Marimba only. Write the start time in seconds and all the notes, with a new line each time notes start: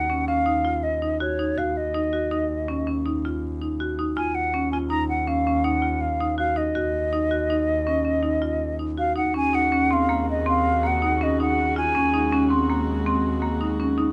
0.10 C#4
0.28 C#4
0.46 D#4
0.65 F4
1.02 D#4
1.20 F#4
1.39 D#4
1.58 F#4
1.94 D#4
2.13 F#4
2.31 D#4
2.68 C#4
2.87 C#4
3.06 D#4
3.25 F4
3.61 D#4
3.80 F#4
3.99 D#4
4.17 F4
4.54 C#4
4.73 F4
4.90 D#4
5.27 C#4
5.47 C#4
5.64 D#4
5.82 F4
6.20 D#4
6.38 F#4
6.56 D#4
6.75 F#4
7.13 D#4
7.31 F#4
7.50 D#4
7.87 C#4
8.05 C#4
8.23 D#4
8.42 F4
8.79 D#4
8.98 F#4
9.16 D#4
9.34 C#4
9.53 D#4
9.72 C#4
9.91 C4
10.09 A#3
10.46 C4
10.83 A#3
11.02 D#4
11.21 C#4
11.40 D#4
11.76 F4
11.95 C#4
12.13 D#4
12.32 C#4
12.50 C4
12.70 A#3
13.06 C4
13.42 A#3
13.61 D#4
13.80 C#4
13.98 D#4